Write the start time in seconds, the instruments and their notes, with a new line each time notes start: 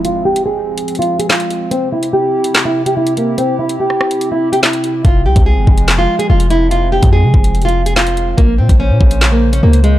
Already playing: analog synth pad F3 G#3 C4
0.05 nylon-string guitar F4, closed hi-hat
0.25 nylon-string guitar G4
0.36 closed hi-hat
0.46 nylon-string guitar G#4
0.78 closed hi-hat
0.88 closed hi-hat
0.95 closed hi-hat
0.99 nylon-string guitar F4, closed hi-hat
1.19 nylon-string guitar G#4, closed hi-hat
1.29 nylon-string guitar F4, snare, clap, closed hi-hat
1.40 closed hi-hat
1.50 closed hi-hat
1.71 analog synth pad C3 E4 G4, nylon-string guitar C4, closed hi-hat
1.92 nylon-string guitar E4
2.03 closed hi-hat
2.13 nylon-string guitar G4
2.44 closed hi-hat
2.55 snare, clap, closed hi-hat
2.65 nylon-string guitar E4
2.86 nylon-string guitar G4, closed hi-hat
2.97 nylon-string guitar E4
3.07 closed hi-hat
3.17 nylon-string guitar A#3, closed hi-hat
3.38 nylon-string guitar C4, closed hi-hat
3.59 nylon-string guitar E4
3.69 closed hi-hat
3.80 nylon-string guitar G4
3.90 cross-stick
4.01 cross-stick
4.11 closed hi-hat
4.21 closed hi-hat
4.32 nylon-string guitar E4
4.53 nylon-string guitar G4, closed hi-hat
4.63 nylon-string guitar E4, snare, clap, closed hi-hat
4.73 closed hi-hat
4.84 closed hi-hat
5.05 808-style bass F1, analog synth pad F3 G#3, nylon-string guitar F4, kick, closed hi-hat
5.26 808-style bass C2, nylon-string guitar G4
5.36 808-style bass C2, kick, closed hi-hat
5.46 nylon-string guitar G#4
5.57 808-style bass G1
5.67 808-style bass F1, kick
5.78 closed hi-hat
5.88 snare, clap, closed hi-hat
5.98 nylon-string guitar F4
6.19 nylon-string guitar G#4, closed hi-hat
6.30 808-style bass F1, nylon-string guitar F4
6.40 closed hi-hat
6.50 nylon-string guitar E4, closed hi-hat
6.71 nylon-string guitar F4, closed hi-hat
6.92 nylon-string guitar G4
7.03 808-style bass F2, kick, closed hi-hat
7.13 nylon-string guitar G#4
7.23 808-style bass C3
7.34 808-style bass F1, kick
7.44 closed hi-hat
7.55 closed hi-hat
7.62 nylon-string guitar F4, closed hi-hat
7.69 closed hi-hat
7.86 nylon-string guitar G#4, closed hi-hat
7.96 nylon-string guitar F4, snare, clap, closed hi-hat
8.07 closed hi-hat
8.17 closed hi-hat
8.38 808-style bass A#1, analog synth pad C#3 A#3 C5, nylon-string guitar A#3, kick, closed hi-hat
8.58 808-style bass A#2, nylon-string guitar C4
8.69 808-style bass A#1, kick, closed hi-hat
8.80 nylon-string guitar C#4
8.90 808-style bass A#2
9.01 808-style bass A#1, kick
9.11 closed hi-hat
9.21 snare, clap, closed hi-hat
9.32 nylon-string guitar A#3
9.53 nylon-string guitar C#4, closed hi-hat
9.63 808-style bass C#2, nylon-string guitar A#3
9.73 closed hi-hat
9.84 nylon-string guitar G#3, closed hi-hat